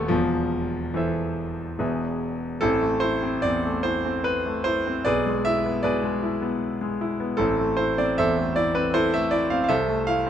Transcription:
Already playing: D#1 D#2 A3 B3 A4 C5 F#5
0.08 E1 E2 F3
0.94 E3 A4 C5 E5
1.79 E1 E2 G#4 B4 E5
2.61 A1 C4 E4 A4
2.82 A3
3.00 E4 C5
3.23 C4
3.42 E2 D5
3.65 A3
3.83 E4 C5
4.06 C4
4.24 B4
4.46 A3
4.64 E4 C5
4.87 C4
5.05 B1 G#4 B4 D5
5.26 G#3
5.45 E4 E5
5.65 B3
5.83 B2 G#4 B4 D5
6.03 G#3
6.23 E4
6.42 B3
6.81 G#3
7.01 E4
7.20 B3
7.37 A1 C4 E4 A4
7.59 A3
7.77 E4 C5
7.98 C4 D5
8.18 E2 A4 C5 E5
8.37 A3
8.56 E4 D5
8.75 C4 B4
8.94 E4 A4 C5
9.14 A3 E5
9.31 E4 D5
9.50 C4 F5
9.64 F5
9.69 C2 A4 C5 E5
9.88 A3
10.07 E4 F5
10.27 C4

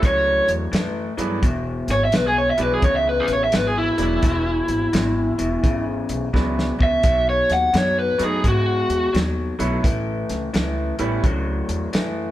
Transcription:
0.02 C#2 A2 F#3, kick, closed hi-hat
0.06 C#5
0.48 E2, closed hi-hat
0.72 F#2 A2 E3, snare, closed hi-hat
1.17 G2 A2 E3 F#3 B3 D4 E4 G#4, closed hi-hat
1.42 E1 E2 B2, kick, closed hi-hat
1.88 G#1 C#5, snare, closed hi-hat
2.05 E5
2.12 B1 E2 B2 B4, snare, closed hi-hat
2.27 G#4
2.38 C#5
2.51 E5
2.57 B1 E2 B2 F#3 G#3 B3 D4 E4, closed hi-hat
2.63 B4
2.74 G#4
2.82 C#2 E2 C#3 C#5, kick, closed hi-hat
2.97 E5
3.09 B4
3.20 G#4
3.28 A1, closed hi-hat
3.33 C#5
3.44 E5
3.52 G#1 E2 B2 B4, snare, closed hi-hat
3.67 G#4
3.78 E4
3.98 E1 E2 B2 F#3 G#3 B3 D4 E4, closed hi-hat
4.22 E1 E2 B2, kick, closed hi-hat
4.68 G#1, closed hi-hat
4.93 G#1 E2 B2, snare, closed hi-hat
5.38 E1 E2 B2, closed hi-hat
5.63 G#1 E2 C#3, kick, closed hi-hat
6.09 B1, closed hi-hat
6.33 C#2 E2 B2 F#3 G#3 B3 D4 E4, kick, snare
6.59 snare
6.79 C#2 E2 B2, kick
6.83 E5
7.03 B1 B2 F#3, kick, closed hi-hat
7.30 C#5
7.49 D#2 F#5, snare, closed hi-hat
7.73 F#2 B2 F#3, snare, closed hi-hat
7.77 C#5
7.99 B4
8.18 F#2 B2 F#3 A3 B3 C#4 D#4, closed hi-hat
8.23 G#4
8.44 G#2 B2 G#3, kick, closed hi-hat
8.48 F#4
8.89 E2, closed hi-hat
9.13 D#2 B2 F#3, snare, closed hi-hat
9.59 B1 B2 F#3 A3 B3 C#4 E4, closed hi-hat
9.83 A1 A2 E3, kick, closed hi-hat
10.29 C#2, snare, closed hi-hat
10.54 C#2 A2 E3, snare, closed hi-hat
10.99 A1 A2 E3 G3 A3 B3 C#4 E4, closed hi-hat
11.24 C#2 A2 F#3, kick, closed hi-hat
11.69 E2, closed hi-hat
11.93 F#2 A2 E3, snare, closed hi-hat

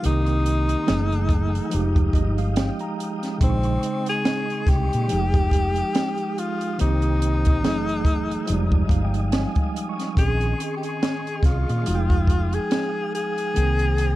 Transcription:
0.02 C2 D#3 A#3 C4 D#4 G4 A#4 G5 C6 D#6, closed hi-hat
0.26 closed hi-hat
0.46 closed hi-hat
0.69 closed hi-hat
0.86 F#1 E3 F#3 A3 G#4 F#5 G#5 E6, snare, closed hi-hat
1.12 closed hi-hat
1.29 kick, closed hi-hat
1.55 closed hi-hat
1.69 F3 G#3 D#4 F5 G5 D#6, closed hi-hat
1.74 F1 G4
1.96 kick, closed hi-hat
2.13 G1 D#5, kick, closed hi-hat
2.38 F5, closed hi-hat
2.56 G5, snare, closed hi-hat
2.79 A#5, closed hi-hat
3.00 closed hi-hat
3.23 snare, closed hi-hat
3.38 A#1 C#3 G#3 C4 D#5 C6 C#6, kick, closed hi-hat
3.43 C4 D#4
3.63 closed hi-hat
3.83 closed hi-hat
4.06 G#4, closed hi-hat
4.25 snare, closed hi-hat
4.50 closed hi-hat
4.67 C2 G4, kick, snare, closed hi-hat
4.93 A#2, closed hi-hat
5.08 F3 G#3 D#4 F5 G5 D#6, closed hi-hat
5.12 F1 G4
5.34 kick, closed hi-hat
5.51 kick, closed hi-hat
5.76 closed hi-hat
5.95 snare, closed hi-hat
6.18 closed hi-hat
6.38 F4, closed hi-hat
6.61 closed hi-hat
6.78 C2 D#3 A#3 C4 D#4 G4 C5 G5 A#5 D#6, closed hi-hat
7.02 closed hi-hat
7.22 closed hi-hat
7.45 kick, closed hi-hat
7.62 F#1 E3 F#3 A3 G#4 F#5 G#5 E6, snare, closed hi-hat
7.89 closed hi-hat
8.05 kick, closed hi-hat
8.31 closed hi-hat
8.46 F1 F3 G#3 D#4 D#5 F5 G#5 D#6, closed hi-hat
8.52 G3
8.72 kick
8.89 G1 F5, kick, closed hi-hat
9.05 G5
9.14 closed hi-hat
9.32 G#5, snare, closed hi-hat
9.55 kick, closed hi-hat
9.76 closed hi-hat
9.89 C#6
9.99 snare, closed hi-hat
10.15 A#1 D#3 C4 C#4 G#4 D#5 C6 C#6, kick, closed hi-hat
10.20 G#4
10.40 closed hi-hat
10.60 closed hi-hat
10.76 G4
10.83 G#4, closed hi-hat
11.03 snare, closed hi-hat
11.27 closed hi-hat
11.43 C2 F4, kick, snare, closed hi-hat
11.69 A#2, closed hi-hat
11.84 F3 G#3 D#4 F5 G5 D#6, closed hi-hat
11.88 F1 F#4
11.95 G5
12.10 kick, closed hi-hat
12.27 kick, closed hi-hat
12.53 G#4, closed hi-hat
12.71 snare, closed hi-hat
13.15 G#4, closed hi-hat
13.38 closed hi-hat
13.54 C2 D#3 A#3 C4 C5 G5 A#5, closed hi-hat
13.79 closed hi-hat
13.98 closed hi-hat

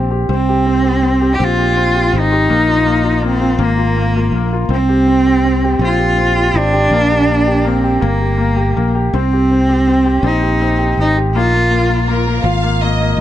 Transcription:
Already playing: A#1 C4 G4
0.11 G4
0.29 C2 C4
0.34 C4
0.49 G4
0.66 C4
0.85 G4
1.03 C4
1.21 G4
1.35 G4
1.39 A#1 C4
1.44 F4
1.58 G4
1.77 C4
1.95 G4
2.13 G#1 C4
2.18 D#4
2.32 G4
2.49 A#1 A#3
2.68 F4
2.86 A#3
3.04 F4
3.22 A#3
3.28 C4
3.41 F4
3.59 G#1 A#3
3.64 A#3
3.77 F4
3.97 A#3
4.16 F4
4.32 A#1 A#3
4.53 F4
4.69 C2 C4
4.73 C4
4.89 G4
5.08 C4
5.26 G4
5.45 C4
5.64 G4
5.79 A#1 C4
5.84 F4
5.99 G4
6.18 C4
6.36 G4
6.54 G#1 C4 D4
6.73 G4
6.90 A#1 A#3
7.11 G4
7.29 A#3
7.47 G4
7.65 A#3 C4
7.84 G4
8.01 G1 A#3
8.21 G4
8.38 A#3
8.56 G4
8.76 A#1 A#3
8.95 G4
9.14 C2 C4
9.33 G4
9.51 C4
9.69 G4
9.88 C4
10.05 G4
10.23 A#1 C4 D#4
10.42 G4
10.62 C4
10.79 G4
10.97 G#1 C4 D#4
11.17 G4
11.35 A#1 A#3 F4
11.54 A#3
11.71 A#3
11.89 A#3
12.07 A#3 A#4
12.27 A#3
12.43 G#1 F4 F5
12.63 A#3
12.81 A#3 D#5
13.01 A#3
13.17 A#1

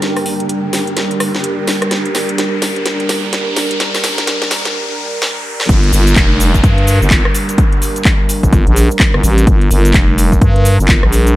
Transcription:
Already playing: G3 D4 G4 A#4 G5, riser
0.02 snare, closed hi-hat
0.17 cross-stick, open hi-hat
0.26 open hi-hat
0.40 closed hi-hat
0.49 closed hi-hat
0.73 snare, open hi-hat
0.87 closed hi-hat
0.97 snare, closed hi-hat
1.11 closed hi-hat
1.20 cross-stick, open hi-hat
1.35 snare
1.44 closed hi-hat
1.67 snare, open hi-hat
1.82 cross-stick, closed hi-hat
1.91 snare, closed hi-hat
2.05 closed hi-hat
2.15 snare, open hi-hat
2.29 closed hi-hat
2.38 snare, closed hi-hat
2.62 snare, open hi-hat
2.76 closed hi-hat
2.86 snare, closed hi-hat
3.00 closed hi-hat
3.09 snare, open hi-hat
3.33 snare, closed hi-hat
3.56 snare, open hi-hat
3.71 closed hi-hat
3.80 snare, closed hi-hat
3.94 snare, open hi-hat
4.04 snare, open hi-hat
4.18 snare, closed hi-hat
4.27 snare, closed hi-hat
4.42 snare
4.51 snare, open hi-hat
4.65 snare, closed hi-hat
5.22 snare
5.60 snare
5.69 G1 G3 D4 A#4, kick, closed hi-hat, downlifter, shaker
5.83 closed hi-hat
5.93 G1, open hi-hat, shaker
6.07 closed hi-hat, shaker
6.16 F1, kick, clap, closed hi-hat, shaker
6.40 open hi-hat, shaker
6.54 kick, closed hi-hat, shaker
6.64 G2, kick, closed hi-hat, shaker
6.78 closed hi-hat
6.87 open hi-hat, shaker
7.02 G1, shaker
7.10 kick, clap, closed hi-hat, shaker
7.25 cross-stick
7.34 open hi-hat, shaker
7.49 closed hi-hat, shaker
7.58 kick, closed hi-hat, shaker
7.72 closed hi-hat
7.82 open hi-hat, shaker
7.96 closed hi-hat, shaker
8.05 kick, clap, closed hi-hat, shaker
8.29 open hi-hat, shaker
8.43 G1, kick, closed hi-hat, shaker
8.53 kick, closed hi-hat, shaker
8.67 A#1, closed hi-hat
8.76 open hi-hat, shaker
8.91 shaker
8.99 kick, clap, closed hi-hat, shaker
9.14 G1, cross-stick
9.23 A1, open hi-hat, shaker
9.38 closed hi-hat, shaker
9.47 G1, kick, closed hi-hat, shaker
9.61 closed hi-hat
9.71 G1, open hi-hat, shaker
9.85 closed hi-hat, shaker
9.94 F1, kick, clap, closed hi-hat, shaker
10.18 open hi-hat, shaker
10.32 kick, closed hi-hat, shaker
10.42 G2, kick, closed hi-hat, shaker
10.56 closed hi-hat
10.65 open hi-hat, shaker
10.80 G1, shaker
10.88 kick, clap, closed hi-hat, shaker
11.03 A#1, cross-stick
11.12 open hi-hat, shaker
11.27 closed hi-hat, shaker

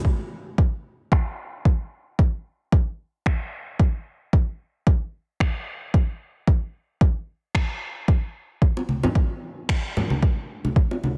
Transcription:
0.05 kick
0.58 kick
1.12 finger snap, kick
1.65 kick
2.19 kick
2.72 kick
3.26 finger snap, kick
3.80 kick
4.33 kick
4.87 kick
5.40 finger snap, kick
5.94 kick
6.47 kick
7.01 kick
7.55 finger snap, kick
8.08 kick
8.62 kick
8.77 high bongo
8.89 high conga
9.03 high bongo, low conga
9.15 kick
9.69 finger snap, kick
9.97 low conga
10.10 high conga
10.23 kick
10.65 high conga
10.76 kick
10.91 high bongo
11.04 high conga

